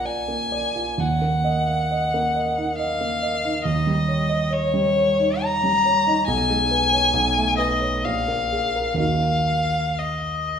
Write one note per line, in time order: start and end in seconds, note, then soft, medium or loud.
0.00 0.95 A#1 soft
0.00 0.28 A#3 soft
0.00 0.19 F4 soft
0.00 0.05 D5 soft
0.00 1.01 D#5 soft
0.05 0.43 D5 soft
0.05 1.01 G#5 medium
0.28 0.66 A#3 soft
0.52 0.89 D5 soft
0.75 0.99 F4 soft
0.98 3.61 D#2 soft
0.98 2.78 F#5 medium
1.22 1.58 A#3 soft
1.44 1.81 D#5 soft
1.68 1.90 F5 soft
1.91 2.27 D#5 soft
2.14 2.49 A#3 soft
2.35 2.70 D#5 soft
2.57 2.92 D#4 soft
2.79 3.13 D#5 soft
2.79 3.63 F5 medium
3.01 3.35 A#3 soft
3.23 3.57 D#5 soft
3.45 3.66 D#4 soft
3.65 6.23 D#2 soft
3.65 4.54 D#5 medium
3.87 4.21 G3 soft
4.08 4.42 C#5 soft
4.29 4.51 D#5 soft
4.51 4.87 C#5 soft
4.51 5.43 C#5 medium
4.74 5.10 G3 soft
4.97 5.33 C#5 soft
5.20 5.55 D#4 soft
5.42 5.77 C#5 soft
5.42 6.27 A#5 medium
5.64 5.98 G3 soft
5.85 6.19 C#5 soft
6.07 6.28 D#4 soft
6.27 7.11 B1 soft
6.27 7.56 G#5 medium
6.49 6.83 G#3 soft
6.71 7.05 B4 soft
6.92 7.14 C#5 soft
7.13 8.01 B1 soft
7.36 7.72 A3 soft
7.58 7.95 B4 soft
7.58 8.06 D#5 medium
7.81 8.04 C#5 soft
8.05 8.97 A#1 soft
8.05 8.99 F5 medium
8.28 8.65 A#3 soft
8.52 8.90 G#4 soft
8.76 9.00 A#4 soft
8.94 10.59 D#2 soft
8.94 10.59 A#3 soft
8.94 10.59 D#4 soft
8.94 10.59 F#4 soft
9.00 10.00 F5 medium
9.98 10.59 D#5 soft